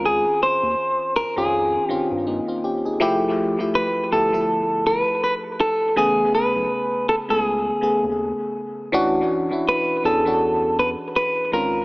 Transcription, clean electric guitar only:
0.06 0.42 G#4 medium
0.43 1.16 C5 loud
1.16 1.36 A#4 loud
1.38 1.86 G#4 medium
1.86 2.07 G4 medium
3.75 4.09 B4 loud
4.12 4.86 A4 loud
4.87 5.22 B4 loud
5.24 5.33 B4 loud
5.60 5.97 A4 loud
5.97 6.34 G#4 loud
6.35 7.09 B4 loud
7.09 7.15 A4 loud
7.30 8.04 G#4 medium
9.69 10.02 B4 medium
10.05 10.79 A4 medium
10.79 10.89 B4 loud
11.16 11.50 B4 medium
11.53 11.85 A#4 loud

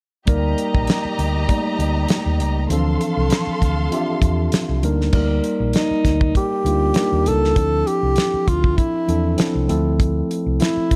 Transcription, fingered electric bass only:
0.27 0.53 D2 medium
0.74 0.86 A#1 medium
1.05 muted fingered electric bass stroke soft
1.19 1.44 D2 medium
1.79 2.04 D2 medium
2.26 2.40 D#2 medium
2.40 2.65 C#2 medium
2.70 2.95 D2 loud
3.17 3.29 C2 medium
3.47 muted fingered electric bass stroke soft
3.62 3.87 D2 medium
4.21 4.47 E2 medium
4.53 muted fingered electric bass stroke soft
4.69 4.81 C2 medium
4.83 5.08 D2 medium
5.13 5.39 D2 medium
5.60 5.72 A#1 medium
5.91 muted fingered electric bass stroke soft
6.05 6.30 D2 medium
6.65 6.91 D2 medium
7.12 7.28 D#2 medium
7.26 7.52 C#2 medium
7.56 7.82 D2 loud
8.03 8.15 C2 medium
8.34 muted fingered electric bass stroke soft
8.48 8.73 D2 medium
9.08 9.34 E2 medium
9.39 muted fingered electric bass stroke soft
9.55 9.67 C2 medium
9.70 10.21 D2 medium
10.46 10.58 C2 medium
10.77 muted fingered electric bass stroke soft
10.91 10.96 A1 medium

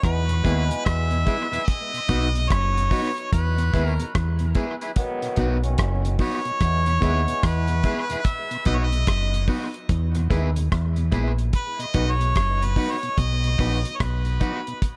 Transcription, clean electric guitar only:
0.30 muted clean electric guitar stroke soft
0.44 0.63 E4 loud
0.44 0.63 G#4 loud
0.44 0.64 B4 loud
1.27 1.45 E4 medium
1.27 1.46 G#4 medium
1.27 1.46 B4 medium
1.53 1.62 E4 soft
1.53 1.61 G#4 medium
1.53 1.61 B4 medium
2.09 2.27 D#4 medium
2.09 2.27 F#4 medium
2.09 2.28 B4 medium
2.91 3.09 D#4 medium
2.91 3.10 F#4 medium
2.91 3.10 B4 medium
3.59 muted clean electric guitar stroke soft
3.73 3.92 E4 loud
3.73 3.92 G#4 loud
3.73 3.92 B4 loud
4.55 4.74 E4 medium
4.55 4.74 G#4 medium
4.55 4.75 B4 medium
4.82 4.90 E4 soft
4.82 4.90 G#4 medium
4.82 4.90 B4 medium
5.38 5.56 D#4 medium
5.38 5.57 F#4 medium
5.38 5.57 B4 medium
6.20 6.38 D#4 medium
6.20 6.39 F#4 medium
6.20 6.39 B4 medium
6.87 muted clean electric guitar stroke soft
7.02 7.20 E4 loud
7.02 7.21 G#4 loud
7.02 7.21 B4 loud
7.85 8.03 E4 medium
7.85 8.03 G#4 medium
7.85 8.03 B4 medium
8.11 8.19 E4 medium
8.11 8.19 G#4 medium
8.11 8.19 B4 medium
8.66 8.84 D#4 medium
8.66 8.85 F#4 medium
8.66 8.85 B4 loud
9.48 9.66 D#4 medium
9.48 9.67 F#4 medium
9.48 9.67 B4 medium
10.15 muted clean electric guitar stroke soft
10.30 10.49 E4 medium
10.30 10.49 G#4 medium
10.30 10.49 B4 loud
11.12 11.30 E4 medium
11.12 11.31 G#4 medium
11.12 11.32 B4 medium
11.94 12.13 D#4 medium
11.94 12.13 F#4 medium
11.94 12.14 B4 medium
12.77 12.95 D#4 medium
12.77 12.96 F#4 medium
12.77 12.96 B4 medium
13.58 13.77 D#4 medium
13.58 13.78 F#4 medium
13.58 13.78 B4 medium
14.40 14.59 D#4 medium
14.40 14.60 F#4 medium
14.40 14.60 B4 medium

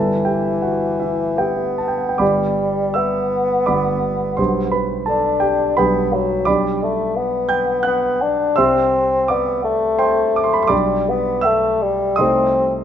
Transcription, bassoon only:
0.00 1.40 E3 soft
1.38 2.20 B3 soft
2.21 2.97 G3 soft
2.95 4.81 B3 medium
5.09 5.74 D4 medium
5.77 6.15 B3 medium
6.13 6.49 F#3 soft
6.47 6.85 G3 soft
6.83 7.17 A3 soft
7.16 7.85 B3 medium
7.86 8.23 B3 medium
8.22 8.59 D4 medium
8.58 9.32 C4 medium
9.30 9.63 B3 medium
9.64 10.73 A3 medium
10.72 11.10 G3 medium
11.09 11.47 B3 medium
11.45 11.84 A3 medium
11.82 12.22 G3 medium
12.21 12.72 C4 medium

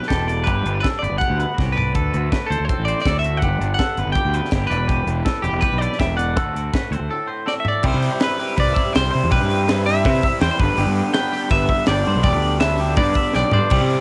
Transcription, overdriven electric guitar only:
7.83 8.21 C3 medium
7.83 8.21 G3 medium
7.83 8.23 C4 loud
7.83 8.22 E4 loud
8.21 8.56 C3 medium
8.21 8.39 G3 medium
8.21 8.38 C4 medium
8.21 8.37 E4 medium
8.38 8.58 G3 medium
8.38 8.57 C4 medium
8.38 8.59 E4 medium
8.57 8.93 C3 loud
8.57 8.94 G3 loud
8.57 8.94 C4 loud
8.57 8.95 E4 loud
8.94 9.30 C3 medium
8.94 9.14 G3 medium
8.94 9.12 C4 medium
8.94 9.12 E4 medium
9.13 9.32 G3 medium
9.13 9.32 C4 medium
9.13 9.32 E4 medium
9.31 9.66 C3 medium
9.31 9.67 G3 loud
9.31 9.67 C4 medium
9.31 9.69 E4 loud
9.67 10.03 C3 medium
9.67 9.88 G3 medium
9.67 9.86 C4 medium
9.67 9.86 E4 medium
9.86 10.05 G3 medium
9.86 10.04 C4 medium
9.86 10.06 E4 medium
10.04 10.39 C3 loud
10.04 10.41 G3 loud
10.04 10.41 C4 loud
10.04 10.43 E4 loud
10.40 10.58 C3 medium
10.40 10.61 G3 medium
10.40 10.59 C4 medium
10.40 10.60 E4 loud
10.60 10.77 G2 medium
10.60 10.78 D3 medium
10.60 10.79 G3 medium
10.60 10.79 B3 medium
10.60 10.80 D4 medium
10.77 11.50 G2 loud
10.77 11.14 D3 loud
10.77 11.15 G3 loud
10.77 11.16 B3 loud
10.77 11.17 D4 loud
11.15 11.51 D3 medium
11.15 11.35 G3 medium
11.15 11.34 B3 medium
11.15 11.33 D4 medium
11.33 11.52 G3 medium
11.33 11.52 B3 medium
11.33 11.52 D4 medium
11.51 12.06 G2 loud
11.51 11.84 D3 medium
11.51 11.87 G3 loud
11.51 11.87 B3 loud
11.51 11.86 D4 loud
11.85 12.21 D3 medium
11.85 12.07 G3 medium
11.85 12.06 B3 medium
11.85 12.03 D4 medium
12.04 12.23 G3 medium
12.04 12.24 B3 medium
12.04 12.23 D4 medium
12.22 12.79 G2 medium
12.22 12.57 D3 loud
12.22 12.59 G3 loud
12.22 12.60 B3 loud
12.22 12.59 D4 loud
12.58 12.94 D3 medium
12.58 12.78 G3 medium
12.58 12.78 B3 medium
12.58 12.76 D4 medium
12.77 12.95 G3 medium
12.77 12.97 B3 medium
12.77 12.96 D4 medium
12.95 13.52 G2 loud
12.95 13.31 D3 loud
12.95 13.33 G3 loud
12.95 13.33 B3 loud
12.95 13.33 D4 loud
13.32 13.69 D3 medium
13.32 13.54 G3 medium
13.32 13.53 B3 medium
13.32 13.52 D4 loud
13.53 13.71 G3 medium
13.53 13.71 B3 medium
13.53 13.70 D4 medium
13.70 14.01 C3 loud
13.70 14.01 G3 loud
13.70 14.01 C4 loud
13.70 14.01 E4 loud

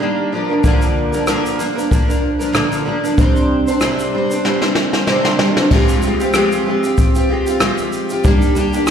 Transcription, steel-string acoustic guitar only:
0.00 0.32 D#3 medium
0.00 0.32 G3 medium
0.00 0.32 A#3 medium
0.00 0.32 D4 medium
0.00 0.32 G4 medium
0.32 0.49 F3 medium
0.32 0.49 A#3 medium
0.32 0.48 D4 medium
0.32 0.47 A#4 medium
0.48 0.63 F3 soft
0.48 0.63 A#3 medium
0.48 0.64 D4 soft
0.48 0.63 A#4 medium
0.64 1.13 A#2 medium
0.64 1.13 D3 medium
0.64 1.13 F3 medium
0.64 1.12 A#3 medium
0.64 1.12 D4 medium
0.64 1.11 A#4 medium
1.12 1.26 F3 soft
1.12 1.26 A#3 soft
1.12 1.27 D4 medium
1.12 1.27 A#4 medium
1.27 1.59 A#2 medium
1.27 1.59 D3 medium
1.27 1.57 F3 medium
1.27 1.57 A#3 medium
1.27 1.58 D4 medium
1.27 1.58 A#4 medium
1.58 1.76 F3 medium
1.58 1.76 A#3 medium
1.58 1.75 D4 medium
1.58 1.74 A#4 medium
1.75 1.90 F3 soft
1.75 1.90 A#3 soft
1.75 1.91 D4 soft
1.75 1.90 A#4 soft
1.91 2.08 F3 medium
1.91 2.08 A#3 medium
1.91 2.07 D4 medium
1.91 2.07 A#4 medium
2.08 2.40 F3 soft
2.08 2.39 A#3 soft
2.08 2.39 D4 soft
2.08 2.38 A#4 medium
2.39 2.52 F3 soft
2.39 2.52 A#3 soft
2.39 2.52 D4 soft
2.39 2.53 A#4 soft
2.52 2.85 A#2 medium
2.52 2.86 D3 medium
2.52 2.84 F3 medium
2.52 2.85 A#3 medium
2.52 2.85 D4 medium
2.52 2.86 A#4 medium
2.85 3.03 F3 medium
2.85 3.03 A#3 medium
2.85 3.02 D4 medium
2.85 3.02 A#4 medium
3.03 3.17 F3 soft
3.03 3.18 A#3 soft
3.03 3.17 D4 medium
3.03 3.18 A#4 medium
3.18 3.67 C3 medium
3.18 3.67 G3 medium
3.18 3.67 C4 medium
3.18 3.67 D4 medium
3.18 3.66 C5 medium
3.67 3.80 C4 soft
3.67 3.81 D4 soft
3.67 3.81 C5 medium
3.80 4.13 C3 medium
3.80 4.13 G3 medium
3.80 4.13 C4 medium
3.80 4.13 D4 medium
3.80 4.14 C5 medium
4.14 4.31 G3 medium
4.14 4.31 C4 medium
4.14 4.30 D4 medium
4.14 4.29 C5 medium
4.30 4.44 C4 soft
4.30 4.44 D4 soft
4.30 4.44 C5 medium
4.44 4.62 G3 medium
4.44 4.62 C4 medium
4.44 4.61 D4 medium
4.44 4.61 C5 medium
4.62 5.07 C4 soft
4.62 5.07 D4 soft
4.62 5.08 C5 medium
5.08 5.40 C3 medium
5.08 5.38 G3 medium
5.08 5.39 C4 medium
5.08 5.39 D4 medium
5.08 5.40 C5 medium
5.39 5.57 G3 medium
5.39 5.57 C4 medium
5.39 5.56 D4 medium
5.39 5.55 C5 medium
5.56 5.71 C4 soft
5.56 5.71 D4 medium
5.56 5.71 C5 medium
5.72 6.03 F3 medium
5.72 6.02 G#3 medium
5.72 6.02 C4 medium
5.72 6.03 F4 medium
5.72 6.04 G4 medium
6.03 6.21 G#3 medium
6.03 6.20 C4 medium
6.03 6.19 F4 medium
6.03 6.19 G4 medium
6.20 6.34 C4 soft
6.20 6.33 F4 medium
6.20 6.34 G4 medium
6.34 6.66 F3 medium
6.34 6.65 G#3 medium
6.34 6.66 C4 medium
6.34 6.66 F4 medium
6.34 6.67 G4 medium
6.66 6.84 G#3 medium
6.66 6.84 C4 medium
6.66 6.83 F4 medium
6.66 6.82 G4 medium
6.83 7.16 C4 soft
6.83 7.15 F4 soft
6.83 7.14 G4 medium
7.15 7.28 C4 soft
7.15 7.29 F4 soft
7.15 7.30 G4 medium
7.29 7.47 G#3 medium
7.29 7.47 C4 medium
7.29 7.47 F4 medium
7.29 7.45 G4 medium
7.46 7.60 C4 soft
7.46 7.61 F4 soft
7.46 7.61 G4 medium
7.60 8.10 F3 medium
7.60 8.10 G#3 medium
7.60 8.10 C4 medium
7.60 8.10 F4 medium
7.60 8.09 G4 medium
8.11 8.24 C4 soft
8.11 8.24 F4 medium
8.11 8.24 G4 medium
8.24 8.56 D#3 medium
8.24 8.54 G3 medium
8.24 8.54 A#3 medium
8.24 8.55 D4 medium
8.24 8.56 G4 medium
8.55 8.73 G3 medium
8.55 8.74 A#3 medium
8.55 8.73 D4 medium
8.55 8.72 G4 medium
8.73 8.87 A#3 soft
8.73 8.88 D4 soft
8.73 8.88 G4 medium

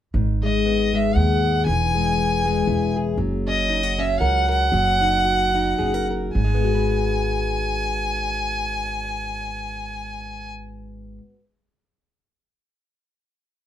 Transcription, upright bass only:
0.14 1.12 G#1 medium
1.16 1.64 D#2 medium
1.67 2.64 E1 medium
2.67 3.16 E1 medium
3.17 4.16 F#1 medium
4.20 4.70 C#2 medium
4.72 5.76 F#1 medium
5.79 6.32 F#1 medium
6.35 11.17 G#1 medium

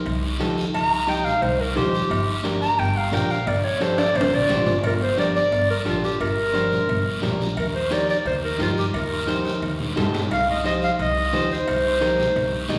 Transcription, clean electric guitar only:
0.40 0.64 D#4 medium
0.40 0.64 G4 medium
0.40 0.64 A4 medium
1.07 1.32 D#4 medium
1.07 1.32 G4 medium
1.07 1.32 D#5 medium
1.76 2.00 D#4 medium
1.76 2.00 G4 medium
1.76 2.01 C5 medium
2.44 2.68 D4 medium
2.44 2.69 G4 medium
2.44 2.69 A#4 medium
3.12 3.37 D4 medium
3.12 3.37 G4 medium
3.12 3.37 A#4 medium
3.80 4.05 D4 medium
3.80 4.05 G4 medium
3.80 4.05 A4 medium
4.49 4.73 D4 medium
4.49 4.74 G4 medium
4.49 4.74 C5 medium
5.18 5.42 D4 medium
5.18 5.42 G4 medium
5.18 5.42 A#4 medium
5.85 6.10 D4 medium
5.85 6.10 G4 medium
5.85 6.10 A4 medium
6.54 6.78 D4 medium
6.54 6.78 G4 medium
6.54 6.78 C5 medium
7.22 7.47 D4 medium
7.22 7.47 G4 medium
7.22 7.47 A#4 medium
7.91 8.15 D#4 medium
7.91 8.15 G4 medium
7.91 8.16 A#4 medium
8.59 8.83 D#4 medium
8.59 8.84 G4 medium
8.59 8.84 A#4 medium
9.27 9.52 D#4 medium
9.27 9.52 G4 medium
9.27 9.52 C5 medium
9.96 10.20 D#4 medium
9.96 10.21 G4 medium
9.96 10.21 A4 medium
10.64 10.89 D#4 medium
10.64 10.89 G4 medium
10.64 10.89 C5 medium
11.33 11.57 D#4 medium
11.33 11.58 G4 medium
11.33 11.58 C5 medium
12.01 12.25 D#4 medium
12.01 12.25 G4 medium
12.01 12.26 A#4 medium
12.69 12.79 D#4 medium
12.69 12.79 G4 medium
12.69 12.79 D#5 loud

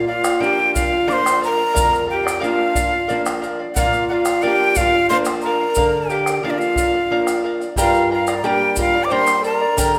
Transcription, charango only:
0.07 0.24 A#4 medium
0.07 0.25 D5 medium
0.07 0.23 F5 medium
0.24 0.39 D5 soft
0.24 0.40 F5 medium
0.40 0.73 A#4 medium
0.40 0.74 D5 medium
0.40 0.74 F5 medium
0.74 0.91 A#4 medium
0.74 0.92 D5 medium
0.74 0.90 F5 medium
0.92 1.06 D5 soft
0.92 1.07 F5 medium
1.07 1.40 A#4 medium
1.07 1.40 D5 medium
1.07 1.41 F5 medium
1.41 1.58 A#4 medium
1.41 1.58 D5 medium
1.41 1.56 F5 medium
1.58 1.73 D5 soft
1.58 1.73 F5 medium
1.74 2.06 A#4 medium
1.74 2.07 D5 medium
1.74 2.07 F5 loud
2.07 2.25 A#4 medium
2.07 2.23 D5 medium
2.07 2.22 F5 medium
2.23 2.39 D5 soft
2.23 2.40 F5 medium
2.40 2.73 A#4 medium
2.40 2.74 D5 medium
2.40 2.75 F5 loud
2.75 2.92 A#4 medium
2.75 2.91 D5 medium
2.75 2.90 F5 medium
2.91 3.07 D5 soft
2.91 3.08 F5 medium
3.08 3.41 A#4 medium
3.08 3.41 D5 medium
3.08 3.42 F5 loud
3.42 3.59 A#4 medium
3.42 3.59 D5 medium
3.42 3.58 F5 medium
3.59 3.75 D5 soft
3.59 3.76 F5 medium
3.76 4.09 A#4 medium
3.76 4.10 D5 loud
3.76 4.10 F5 loud
4.10 4.27 A#4 medium
4.10 4.26 D5 medium
4.10 4.24 F5 medium
4.26 4.42 D5 soft
4.26 4.42 F5 medium
4.42 4.75 A#4 medium
4.42 4.76 D5 medium
4.42 4.76 F5 loud
4.76 4.93 A#4 medium
4.76 4.94 D5 medium
4.76 4.92 F5 medium
4.93 5.09 D5 soft
4.93 5.10 F5 medium
5.10 5.43 A#4 medium
5.10 5.44 D5 medium
5.10 5.44 F5 medium
5.44 5.61 A#4 medium
5.44 5.61 D5 medium
5.44 5.59 F5 medium
5.61 5.76 D5 soft
5.61 5.77 F5 medium
5.76 6.08 A#4 medium
5.76 6.09 D5 medium
5.76 6.10 F5 loud
6.10 6.27 A#4 medium
6.10 6.27 D5 medium
6.10 6.26 F5 medium
6.27 6.43 D5 soft
6.27 6.43 F5 medium
6.43 6.76 A#4 medium
6.43 6.77 D5 medium
6.43 6.78 F5 loud
6.78 6.94 A#4 medium
6.78 6.94 D5 medium
6.78 6.93 F5 medium
6.94 7.11 D5 soft
6.94 7.11 F5 medium
7.12 7.43 A#4 medium
7.12 7.44 D5 medium
7.12 7.45 F5 medium
7.44 7.61 A#4 medium
7.44 7.61 D5 medium
7.44 7.59 F5 medium
7.60 7.77 D5 soft
7.60 7.77 F5 medium
7.77 8.11 G4 medium
7.77 8.10 A#4 medium
7.77 8.11 D5 medium
7.77 8.10 G5 medium
7.77 8.11 A#5 loud
8.11 8.28 A#4 medium
8.11 8.27 D5 medium
8.11 8.28 G5 soft
8.11 8.27 A#5 medium
8.28 8.43 A#4 soft
8.28 8.43 D5 medium
8.28 8.44 A#5 medium
8.44 8.78 G4 medium
8.44 8.77 A#4 medium
8.44 8.78 D5 medium
8.44 8.77 G5 medium
8.44 8.78 A#5 loud
8.78 8.94 A#4 medium
8.78 8.94 D5 medium
8.78 8.95 G5 medium
8.78 8.93 A#5 medium
8.94 9.10 A#4 soft
8.94 9.11 D5 medium
8.94 9.11 A#5 medium
9.11 9.45 G4 medium
9.11 9.43 A#4 medium
9.11 9.43 D5 medium
9.11 9.42 G5 medium
9.11 9.43 A#5 medium
9.43 9.60 A#4 medium
9.43 9.60 D5 medium
9.43 9.61 G5 medium
9.43 9.59 A#5 medium
9.60 9.77 A#4 soft
9.60 9.77 D5 medium
9.60 9.77 A#5 medium
9.78 9.99 G4 medium
9.78 9.99 A#4 medium
9.78 9.99 D5 medium
9.78 9.99 G5 medium
9.78 9.99 A#5 loud

